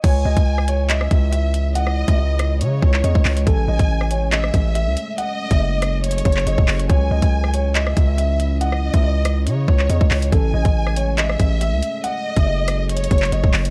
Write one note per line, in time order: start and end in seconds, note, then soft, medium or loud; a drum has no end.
0.04 0.24 C#2 loud
0.04 3.43 C#3 medium
0.04 5.14 G#3 medium
0.04 3.43 C#4 medium
0.04 3.43 E4 medium
0.04 0.22 C#5 medium
0.04 0.86 G#5 loud
0.04 kick loud
0.04 closed hi-hat medium
0.04 crash loud
0.25 0.36 C#2 loud
0.25 0.66 D#5 medium
0.37 1.08 C#2 loud
0.37 kick medium
0.37 closed hi-hat medium
0.58 cross-stick medium
0.68 0.87 C#5 medium
0.68 closed hi-hat medium
0.90 1.30 D#5 medium
0.90 1.71 E5 medium
0.90 clap loud
0.90 closed hi-hat medium
1.01 cross-stick medium
1.11 2.04 C#2 loud
1.11 kick medium
1.11 closed hi-hat medium
1.32 1.73 E5 medium
1.32 closed hi-hat medium
1.54 closed hi-hat medium
1.75 2.57 D#5 loud
1.75 2.06 F#5 loud
1.75 closed hi-hat medium
1.87 cross-stick medium
2.08 2.62 C#2 loud
2.08 2.17 E5 medium
2.08 kick medium
2.08 closed hi-hat medium
2.18 2.78 D#5 medium
2.39 cross-stick medium
2.39 closed hi-hat medium
2.61 2.81 C#3 loud
2.61 3.43 C#5 medium
2.61 closed hi-hat medium
2.82 3.03 C#2 loud
2.82 3.01 C#5 medium
2.82 kick medium
2.94 clap medium
3.04 3.15 E2 loud
3.04 3.44 D#5 medium
3.04 closed hi-hat medium
3.15 3.25 C#2 loud
3.15 kick loud
3.25 3.46 C#2 loud
3.25 clap loud
3.25 open hi-hat medium
3.37 closed hi-hat medium
3.47 3.67 A1 loud
3.47 5.16 A3 medium
3.47 12.00 C#4 loud
3.47 3.65 A4 medium
3.47 4.28 G#5 loud
3.47 kick loud
3.47 closed hi-hat medium
3.68 3.79 A1 loud
3.68 4.08 D#5 medium
3.79 4.51 A1 loud
3.79 kick medium
3.79 closed hi-hat medium
4.01 cross-stick medium
4.11 4.29 C#5 medium
4.11 closed hi-hat medium
4.32 4.73 D#5 medium
4.32 5.14 E5 loud
4.32 clap loud
4.32 closed hi-hat medium
4.44 cross-stick medium
4.54 4.88 A1 loud
4.54 kick medium
4.54 closed hi-hat medium
4.75 5.16 E5 medium
4.75 closed hi-hat medium
4.87 4.96 C#2 loud
4.97 closed hi-hat medium
5.18 6.88 F#3 medium
5.18 6.88 G#4 medium
5.18 6.88 A4 medium
5.18 6.00 D#5 loud
5.18 5.49 F#5 loud
5.18 closed hi-hat medium
5.51 6.22 F#1 loud
5.51 5.59 E5 medium
5.51 kick medium
5.51 closed hi-hat medium
5.61 6.21 D#5 medium
5.82 cross-stick medium
5.82 closed hi-hat medium
6.04 6.86 C#5 loud
6.04 closed hi-hat medium
6.11 closed hi-hat medium
6.18 closed hi-hat medium
6.25 6.46 F#1 loud
6.25 6.43 C#5 medium
6.25 kick medium
6.25 closed hi-hat medium
6.32 closed hi-hat medium
6.37 clap medium
6.37 closed hi-hat medium
6.47 6.58 F#1 loud
6.47 6.87 D#5 medium
6.47 closed hi-hat medium
6.58 6.68 E1 loud
6.58 kick loud
6.68 6.89 F#1 loud
6.68 clap loud
6.68 open hi-hat medium
6.79 closed hi-hat medium
6.89 7.10 C#2 loud
6.89 10.29 C#3 medium
6.89 10.29 E4 loud
6.89 7.08 C#5 loud
6.89 7.71 G#5 loud
6.89 kick loud
6.89 closed hi-hat medium
7.11 7.22 C#2 loud
7.11 7.51 D#5 medium
7.22 7.94 C#2 loud
7.22 kick medium
7.22 closed hi-hat medium
7.44 cross-stick medium
7.54 7.72 C#5 medium
7.54 closed hi-hat medium
7.75 8.15 D#5 medium
7.75 8.57 E5 medium
7.75 clap loud
7.75 closed hi-hat medium
7.87 cross-stick medium
7.97 8.90 C#2 loud
7.97 kick medium
7.97 closed hi-hat medium
8.18 8.58 E5 medium
8.18 closed hi-hat medium
8.40 closed hi-hat medium
8.61 9.43 D#5 loud
8.61 8.92 F#5 loud
8.61 closed hi-hat medium
8.72 cross-stick medium
8.94 9.48 C#2 loud
8.94 9.02 E5 medium
8.94 kick medium
8.94 closed hi-hat medium
9.04 9.64 D#5 medium
9.25 cross-stick medium
9.25 closed hi-hat medium
9.47 9.67 C#3 loud
9.47 10.28 C#5 medium
9.47 closed hi-hat medium
9.68 9.89 C#2 loud
9.68 9.86 C#5 medium
9.68 kick medium
9.79 clap medium
9.90 10.00 E2 loud
9.90 10.30 D#5 medium
9.90 closed hi-hat medium
10.01 10.10 C#2 loud
10.01 kick loud
10.11 10.32 C#2 loud
10.11 clap loud
10.11 open hi-hat medium
10.22 closed hi-hat medium
10.32 10.53 A1 loud
10.32 12.02 G#3 medium
10.32 12.02 A3 medium
10.32 10.51 A4 medium
10.32 11.14 G#5 loud
10.32 kick loud
10.32 closed hi-hat medium
10.54 10.65 A1 loud
10.54 10.94 D#5 medium
10.65 11.37 A1 loud
10.65 kick medium
10.65 closed hi-hat medium
10.87 cross-stick medium
10.96 11.15 C#5 medium
10.96 closed hi-hat medium
11.18 11.58 D#5 medium
11.18 12.00 E5 loud
11.18 clap loud
11.18 closed hi-hat medium
11.30 cross-stick medium
11.40 11.74 A1 loud
11.40 kick medium
11.40 closed hi-hat medium
11.61 12.01 E5 medium
11.61 closed hi-hat medium
11.72 11.82 C#2 loud
11.83 closed hi-hat medium
12.04 13.70 F#3 medium
12.04 13.70 C#4 medium
12.04 13.70 G#4 medium
12.04 13.70 A4 medium
12.04 12.86 D#5 loud
12.04 12.35 F#5 loud
12.04 closed hi-hat medium
12.36 13.08 F#1 loud
12.36 12.45 E5 medium
12.36 kick medium
12.36 closed hi-hat medium
12.47 13.07 D#5 medium
12.68 cross-stick medium
12.68 closed hi-hat medium
12.89 13.70 C#5 loud
12.89 closed hi-hat medium
12.97 closed hi-hat medium
13.04 closed hi-hat medium
13.11 13.32 F#1 loud
13.11 13.29 C#5 medium
13.11 kick medium
13.11 closed hi-hat medium
13.18 closed hi-hat medium
13.22 clap medium
13.22 closed hi-hat medium
13.32 13.43 F#1 loud
13.32 13.70 D#5 medium
13.32 closed hi-hat medium
13.44 13.53 E1 loud
13.44 kick loud
13.54 13.70 F#1 loud
13.54 clap loud
13.54 open hi-hat medium
13.65 closed hi-hat medium